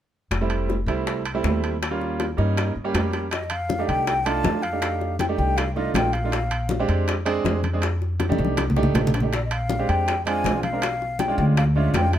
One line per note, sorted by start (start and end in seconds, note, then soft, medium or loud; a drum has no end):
0.31 0.83 F1 medium
0.31 high bongo medium
0.31 high timbale medium
0.41 0.74 G3 medium
0.41 0.74 A3 medium
0.41 0.74 C4 medium
0.41 0.74 E4 medium
0.50 high timbale medium
0.69 high bongo medium
0.69 low timbale medium
0.86 1.39 C2 medium
0.86 1.20 G3 medium
0.86 1.20 A3 medium
0.86 1.21 C4 medium
0.86 1.21 E4 medium
0.86 high timbale medium
1.07 high bongo medium
1.07 high timbale medium
1.25 high timbale medium
1.34 1.74 G3 medium
1.34 1.74 A3 medium
1.34 1.74 C4 medium
1.34 1.74 E4 medium
1.44 2.32 D#2 medium
1.44 high bongo medium
1.44 low bongo medium
1.44 low timbale medium
1.64 high timbale medium
1.83 high bongo medium
1.83 high timbale medium
1.91 2.24 G3 medium
1.91 2.24 A#3 medium
1.91 2.24 C#4 medium
1.91 2.24 F4 medium
2.01 high bongo soft
2.20 high bongo medium
2.20 high timbale medium
2.20 low timbale medium
2.37 2.73 G2 medium
2.37 2.71 G3 medium
2.37 2.71 A#3 medium
2.37 2.71 C#4 medium
2.37 2.71 D#4 loud
2.37 high bongo soft
2.57 high bongo medium
2.57 high timbale medium
2.76 2.93 G2 medium
2.84 3.24 G3 medium
2.84 3.24 A#3 medium
2.84 3.24 C#4 medium
2.84 3.25 G4 medium
2.94 3.83 F2 medium
2.94 high bongo medium
2.94 low bongo medium
2.94 high timbale medium
2.94 low timbale medium
3.13 high bongo soft
3.13 high timbale medium
3.31 3.44 D#5 medium
3.31 high bongo medium
3.31 high conga soft
3.31 high timbale medium
3.44 3.52 D#5 medium
3.50 3.89 F5 loud
3.50 high conga soft
3.50 high timbale loud
3.69 high bongo medium
3.69 high conga medium
3.69 low timbale medium
3.79 4.12 A3 medium
3.79 4.12 D4 medium
3.79 4.12 D#4 medium
3.79 4.12 G4 medium
3.88 4.41 C2 medium
3.88 4.27 G5 loud
3.88 high conga soft
3.88 high timbale medium
4.07 high bongo medium
4.07 high conga soft
4.07 high timbale medium
4.25 4.59 A3 medium
4.25 4.59 D4 medium
4.25 4.59 D#4 medium
4.25 4.59 F4 medium
4.25 4.64 A5 loud
4.25 high conga soft
4.25 high timbale loud
4.44 5.33 F2 medium
4.44 high bongo medium
4.44 low bongo medium
4.44 high conga medium
4.44 low timbale medium
4.62 5.19 F5 loud
4.62 high timbale medium
4.73 5.12 A3 medium
4.73 5.13 D4 medium
4.73 5.13 D#4 medium
4.73 5.13 G4 medium
4.82 high bongo medium
4.82 high conga soft
4.82 high timbale medium
5.01 high bongo soft
5.01 high conga soft
5.19 5.25 G5 medium
5.19 high bongo medium
5.19 high conga medium
5.19 high timbale medium
5.19 low timbale soft
5.29 5.62 A3 medium
5.29 5.62 D4 medium
5.29 5.62 D#4 medium
5.29 5.62 G4 medium
5.37 5.91 C2 medium
5.37 5.58 G5 loud
5.37 high bongo soft
5.57 5.75 F5 medium
5.57 high bongo medium
5.57 high conga soft
5.57 high timbale medium
5.75 6.09 A3 medium
5.75 6.09 D4 medium
5.75 6.10 D#4 medium
5.75 6.10 F4 medium
5.75 5.94 D#5 medium
5.75 high conga soft
5.94 6.83 A#1 medium
5.94 6.14 G5 medium
5.94 high bongo medium
5.94 low bongo medium
5.94 high conga medium
5.94 high timbale loud
5.94 low timbale medium
6.13 6.89 F5 medium
6.13 high bongo soft
6.13 high conga soft
6.13 high timbale medium
6.24 6.33 A3 medium
6.24 6.33 D4 medium
6.24 6.34 D#4 medium
6.24 6.34 F4 medium
6.32 high bongo medium
6.32 high conga soft
6.32 high timbale medium
6.51 high conga soft
6.51 high timbale loud
6.69 high bongo medium
6.69 high conga medium
6.69 low timbale medium
6.79 7.12 G#3 medium
6.79 7.13 C4 medium
6.79 7.13 D4 medium
6.79 7.13 G4 loud
6.88 7.41 F2 medium
6.88 high conga soft
6.88 high timbale medium
7.07 high bongo medium
7.07 high conga soft
7.07 high timbale medium
7.25 7.59 G#3 medium
7.25 7.59 C4 loud
7.25 7.59 D4 medium
7.25 7.59 G#4 loud
7.25 high conga soft
7.25 high timbale medium
7.44 8.33 F2 medium
7.44 high bongo medium
7.44 low bongo medium
7.44 high conga medium
7.44 low timbale medium
7.64 high conga medium
7.64 high timbale medium
7.73 7.83 G#3 medium
7.73 7.83 C4 medium
7.73 7.83 D4 medium
7.73 7.83 G#4 medium
7.82 high bongo medium
7.82 high conga soft
7.82 high timbale medium
8.02 high bongo soft
8.02 high conga soft
8.20 high bongo medium
8.20 high conga medium
8.20 high timbale medium
8.20 low timbale medium
8.29 8.62 A3 medium
8.29 8.62 D4 medium
8.29 8.62 D#4 medium
8.29 8.63 G4 medium
8.29 high conga loud
8.38 8.91 C2 loud
8.38 high bongo soft
8.45 high conga medium
8.57 high bongo medium
8.57 high conga medium
8.57 high timbale medium
8.70 low conga medium
8.76 9.09 A3 loud
8.76 9.09 D4 medium
8.76 9.09 D#4 medium
8.76 9.09 G4 loud
8.76 high bongo medium
8.83 low conga loud
8.94 9.82 A#1 medium
8.94 low bongo medium
8.94 low conga medium
8.94 high timbale medium
8.94 low timbale medium
9.07 low conga loud
9.14 low bongo medium
9.14 high timbale medium
9.20 9.32 A3 medium
9.20 9.32 D4 medium
9.20 9.32 D#4 medium
9.20 9.32 G4 medium
9.20 low conga medium
9.33 9.44 D5 medium
9.33 high bongo medium
9.33 high conga soft
9.33 high timbale medium
9.45 9.54 D#5 medium
9.51 9.91 F5 medium
9.51 high conga soft
9.51 high timbale loud
9.69 high bongo medium
9.69 high conga medium
9.69 low timbale medium
9.79 10.12 G#3 medium
9.79 10.12 C4 medium
9.79 10.12 D4 medium
9.79 10.12 G4 medium
9.89 10.41 F2 medium
9.89 10.25 G5 medium
9.89 high conga soft
9.89 high timbale medium
10.07 high bongo medium
10.07 high conga soft
10.07 high timbale medium
10.25 10.59 G#3 medium
10.25 10.59 C4 medium
10.25 10.59 D4 medium
10.25 10.59 F4 medium
10.25 10.61 G#5 loud
10.25 high conga soft
10.25 high timbale medium
10.44 11.32 B1 medium
10.44 high bongo medium
10.44 low bongo medium
10.44 high conga medium
10.44 low timbale medium
10.63 11.21 F5 medium
10.63 high conga medium
10.63 high timbale medium
10.72 10.82 G#3 medium
10.72 10.82 C4 medium
10.72 10.82 D4 medium
10.72 10.82 A#4 medium
10.82 high bongo medium
10.82 high conga soft
10.82 high timbale medium
11.02 high bongo soft
11.02 high conga soft
11.19 11.38 G5 medium
11.19 high bongo medium
11.19 high conga medium
11.19 high timbale medium
11.19 low timbale medium
11.28 11.61 G#3 medium
11.28 11.61 C#4 medium
11.28 11.61 D4 medium
11.28 11.62 F4 medium
11.38 11.90 D2 loud
11.38 11.44 G5 medium
11.38 high bongo soft
11.57 11.64 F5 loud
11.57 high bongo medium
11.57 high conga soft
11.57 high timbale medium
11.75 12.08 G#3 medium
11.75 12.09 C#4 medium
11.75 12.08 D4 medium
11.75 12.09 F4 medium
11.75 11.93 E5 medium
11.75 high conga soft
11.94 12.19 F2 medium
11.94 12.12 G5 medium
11.94 high bongo medium
11.94 low bongo medium
11.94 high conga medium
11.94 high timbale medium
11.94 low timbale medium
12.13 12.19 F5 medium
12.13 high bongo soft
12.13 high conga soft
12.13 high timbale medium